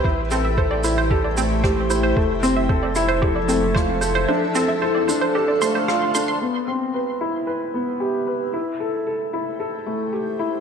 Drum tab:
SH |-x-x-x-x|-x-x-x-x|-x-x-x-x|--------|
SD |------r-|------r-|------r-|--------|
BD |o-o-o-o-|o-o-o-o-|--------|--------|

SH |--------|
SD |--------|
BD |--------|